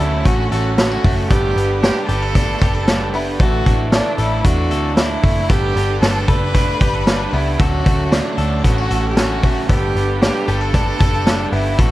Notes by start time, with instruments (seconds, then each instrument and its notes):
Already playing: clean electric guitar F#3 A3 C#4, string machine A4 C#5 F#5 C#6
0.00 picked electric bass D2, overdriven electric guitar A3 C#4 F#4, violin E4, clean electric guitar A4
0.25 picked electric bass A1, overdriven electric guitar D3 A3 C#4 F#4, clean electric guitar C#4, violin F#4, kick, closed hi-hat
0.51 picked electric bass A1, overdriven electric guitar A3 C#4 F#4, violin F#4, clean electric guitar A4, closed hi-hat
0.77 overdriven electric guitar D3 A3 C#4 F#4, clean electric guitar B3, violin F#4, snare, closed hi-hat
0.92 clean electric guitar C#4
1.04 picked electric bass F#1, clean electric guitar A3, overdriven electric guitar A3 C#4 F#4, kick, open hi-hat
1.30 picked electric bass G1, overdriven electric guitar G3 A3 D4 G4 B4, clean electric guitar B3 A4, violin G4, string machine D5 G5 B5, kick, closed hi-hat
1.56 picked electric bass G1, clean electric guitar B3, overdriven electric guitar D4 G4 B4, closed hi-hat
1.82 overdriven electric guitar G3 A3 D4 G4 B4, clean electric guitar D4, violin G4, snare, closed hi-hat
2.09 picked electric bass G1, overdriven electric guitar D4 G4 B4, clean electric guitar G4, violin A4, closed hi-hat
2.22 clean electric guitar A4
2.35 overdriven electric guitar A3 D4 G4 B4, clean electric guitar D4, kick, closed hi-hat
2.60 picked electric bass F#1, overdriven electric guitar D4 G4 B4, clean electric guitar G4, kick, closed hi-hat
2.75 clean electric guitar A4
2.88 overdriven electric guitar G3 A3 D4 G4 B4, clean electric guitar D4, snare, closed hi-hat
3.13 clean electric guitar B3, overdriven electric guitar D4 G4 B4, violin E4, open hi-hat
3.39 picked electric bass A1, overdriven electric guitar A2 D3 A3 D4 E4, clean electric guitar E3 A4, violin F#4, string machine D5 E5 D6, kick, closed hi-hat
3.65 picked electric bass A1, clean electric guitar A3, overdriven electric guitar A3 D4 E4, kick, closed hi-hat
3.92 overdriven electric guitar A2 D3 A3 D4 E4, clean electric guitar D4, violin D4, snare, closed hi-hat
4.18 picked electric bass A1, overdriven electric guitar A3 D4 E4, violin E4, clean electric guitar A4, closed hi-hat
4.44 picked electric bass E2, overdriven electric guitar D3 A3 D4 E4, clean electric guitar D4, violin F#4, kick, closed hi-hat
4.70 picked electric bass D2, overdriven electric guitar A3 D4 E4, clean electric guitar A4, closed hi-hat
4.96 overdriven electric guitar A2 D3 A3 D4 E4, clean electric guitar D4, violin E4, snare, closed hi-hat
5.23 picked electric bass F#1, clean electric guitar A3, overdriven electric guitar A3 D4 E4, kick, open hi-hat
5.49 picked electric bass G1, overdriven electric guitar G3 A3 D4 G4 B4, clean electric guitar B3 A4, violin G4, string machine G5 B5 D6, kick, closed hi-hat
5.75 picked electric bass G1, clean electric guitar B3, overdriven electric guitar D4 G4 B4, closed hi-hat
6.01 picked electric bass G1, overdriven electric guitar G3 A3 D4 G4 B4, clean electric guitar D4, violin A4, snare, closed hi-hat
6.27 picked electric bass F#1, overdriven electric guitar D4 G4 B4, clean electric guitar A4, violin B4, kick, closed hi-hat
6.53 overdriven electric guitar A3 D4 G4 B4, clean electric guitar D4, kick, closed hi-hat
6.80 picked electric bass G1, overdriven electric guitar D4 G4 B4, clean electric guitar G4, kick, closed hi-hat
6.94 clean electric guitar A4
7.06 overdriven electric guitar G3 A3 D4 G4 B4, clean electric guitar D4, snare, closed hi-hat
7.31 picked electric bass C#2, clean electric guitar B3, overdriven electric guitar D4 G4 B4, violin E4, open hi-hat
7.58 picked electric bass D2, overdriven electric guitar D3 A3 C#4 F#4, clean electric guitar F#3 A4, violin F#4, string machine A4 F#5 C#6, kick, closed hi-hat
7.84 picked electric bass D2, clean electric guitar A3, overdriven electric guitar A3 C#4 F#4, kick, closed hi-hat
8.11 overdriven electric guitar D3 A3 C#4 F#4, violin D4, snare, closed hi-hat
8.38 picked electric bass D2, overdriven electric guitar A3 C#4 F#4, clean electric guitar A4, closed hi-hat
8.63 picked electric bass A1, overdriven electric guitar D3 A3 C#4 F#4, clean electric guitar B3, violin F#4, kick, closed hi-hat
8.78 clean electric guitar C#4
8.89 picked electric bass A1, overdriven electric guitar A3 C#4 F#4, clean electric guitar A4, closed hi-hat
9.10 violin G4
9.15 overdriven electric guitar D3 A3 C#4 F#4, clean electric guitar C#4, violin F#4, snare, closed hi-hat
9.42 picked electric bass F#1, clean electric guitar A3, overdriven electric guitar A3 C#4 F#4, kick, open hi-hat
9.69 picked electric bass G1, overdriven electric guitar G3 A3 D4 G4 B4, clean electric guitar B3 A4, violin G4, string machine G5 B5, kick, closed hi-hat
9.94 picked electric bass G1, clean electric guitar B3, overdriven electric guitar D4 G4 B4, closed hi-hat
10.21 overdriven electric guitar G3 A3 D4 G4 B4, clean electric guitar D4, violin G4, snare, closed hi-hat
10.47 picked electric bass G1, overdriven electric guitar D4 G4 B4, clean electric guitar G4, violin A4, closed hi-hat
10.61 clean electric guitar A4
10.73 overdriven electric guitar A3 D4 G4 B4, clean electric guitar D4, kick, closed hi-hat
10.99 picked electric bass F#1, overdriven electric guitar D4 G4 B4, clean electric guitar A4, kick, closed hi-hat
11.26 overdriven electric guitar G3 A3 D4 G4 B4, clean electric guitar D4, snare, closed hi-hat
11.51 picked electric bass G1, clean electric guitar B3, overdriven electric guitar D4 G4 B4, violin E4, open hi-hat
11.77 picked electric bass A1, overdriven electric guitar A2 E3 A3 D4 E4, clean electric guitar E3 A4, violin F#4, string machine E5 E6, kick, closed hi-hat